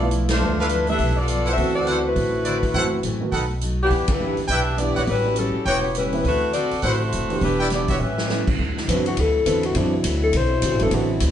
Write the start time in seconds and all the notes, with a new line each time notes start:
Already playing: B1 B3 F4 A4 D5
0.01 A3 B3 E4 F4
0.11 G2 F3 B3 E4, closed hi-hat
0.29 A3 D4 F4 C5, snare, ride
0.40 D2 G2 E3 F3 A3 B3 E4 F4
0.59 A3 D4 E4 F4 A4 B4 F5
0.69 G2 F3 B3 E4, closed hi-hat
0.87 E3 A3 B3 D4 G4 A4 B4 E5, open hi-hat
0.98 B1 G2 F3 B3, kick, open hi-hat
1.03 E4
1.17 B3 F4 A4 D5
1.28 G2 F3 B3 E4, closed hi-hat
1.45 E4 B4 C5 F#5, open hi-hat
1.51 C4 F#4 A4 E5
1.58 D2 D3 E3 B3 C4 F#4 B4, kick, open hi-hat
1.76 C4 F#4 A4 D5
1.87 D3 C4 E4 F#4 B4 C5 F#5, closed hi-hat
2.07 A3 E4 F#4 B4
2.16 A1 D3 C4 F#4 B4, kick, open hi-hat
2.45 D3 C4 E4 F#4 B4 C5 D5, closed hi-hat
2.63 kick, open hi-hat
2.74 F#1 E3 A3 C4 E4 F#4 A4 C5 F#5, kick, open hi-hat
3.03 A1 F#2 E3 A3 C4, closed hi-hat
3.21 D#3 A3 B3 F#4
3.32 B1 B2 F#3 A3 D#4 A4 B4 F#5, kick, open hi-hat
3.61 B2 F#3 A3 D#4, closed hi-hat
3.82 E3 B3 D4 G4
3.90 E2 E3 B3 D4 G4, kick, open hi-hat
4.08 G3 D4, kick, ride
4.12 E4 B4
4.20 E3 B3 D4 G4
4.37 muted upright bass stroke, open hi-hat
4.48 B1 E3 B3 D4 E4 G4 B4 D5 E5 G5, kick, open hi-hat
4.77 E3 B3 D4 E4 G4 D5, closed hi-hat
4.81 G4
4.95 B1 F#4 B4 C#5 F#5, open hi-hat
5.07 A1 A2 G3 C#4 E4 B4, kick, open hi-hat
5.11 C#4 F#4
5.25 F#3 B3 C#4 G4
5.36 A2 G3 C#4 E4 A4, closed hi-hat
5.40 C#4 F#4
5.54 muted upright bass stroke
5.65 E1 A2 G3 B3 E4 F#4 G4 B4 C#5 G5, kick, open hi-hat
5.70 C#4 F#4
5.95 A2 G3 C#4 E4 B4, closed hi-hat
5.99 F#4
6.13 E3 B3 C4 E4, open hi-hat
6.24 D2 D3 A3 C4 E4 F#4 B4, kick, open hi-hat
6.29 F#4 B4
6.53 D3 C4 F#4 A4 B4 D5, closed hi-hat
6.71 muted upright bass stroke, open hi-hat
6.82 A1 D3 A3 C4 E4 F#4 B4 C5 F#5, kick, open hi-hat
6.87 B4
7.12 F1 D3 C4 F#4 B4, closed hi-hat
7.29 E3 B3 D4 G4, open hi-hat
7.41 E1 E3 G3 B3 D4 E4 G4 B4, kick, open hi-hat
7.59 E4 B4 D5 G5
7.70 E3 B3 D4 E4 G4 D5, snare, closed hi-hat
7.74 G4
7.88 F#4 B4 C#5 E5, kick, open hi-hat
7.99 A1 A2 G3 C#4 G4 B4 E5
8.03 C#4 F#4
8.18 snare
8.29 A2 F#3 G3 B3 C#4 E4 F#4, snare
8.47 muted upright bass stroke, kick, crash
8.59 D2 B2 C3 D3 F#3 C4 E4 F#4 B4, kick
8.77 snare
8.88 F#2 D3 E3 B3 C4 D4 F#4 B4, kick, hi-hat pedal, ride
9.06 F#4, ride
9.17 D2 D3 C4 F#4 A4 B4, kick, ride
9.45 E2 D3 E3 B3 C4 D4 F#4 A4 B4, kick, hi-hat pedal, ride
9.63 F#4, ride
9.75 F#2 D3 E3 B3 C4 D4 F#4 B4, kick, ride
10.04 D2 D3 C4 F#4 B4, kick, hi-hat pedal, ride
10.23 A4
10.33 B1 D3 C4 F#4 C5, kick, ride
10.37 B4
10.62 C2 D3 C4 F#4 B4, kick, hi-hat pedal, ride
10.71 A1
10.79 F#1 E3 B3 C4 D4 A4, ride
10.91 A1 D3 E3 B3 C4 D4 F#4 B4, kick, ride
11.20 D2 D3 C4 F#4 B4, kick, hi-hat pedal, ride